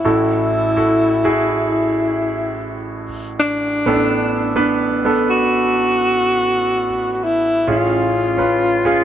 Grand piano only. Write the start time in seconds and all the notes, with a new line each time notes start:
0.05 A1 A2 E4 F#4 A4
0.76 E4 F#4 A4
1.24 E4 F#4 G#4
3.86 A1 A2 B3 C#4 A4
3.93 D4
4.56 B3 D4 B4
5.05 B3 D4 A4
7.67 A1 A2 C#4 F4 G#4
8.37 C#4 F4 B4
8.85 C#4 F4 G#4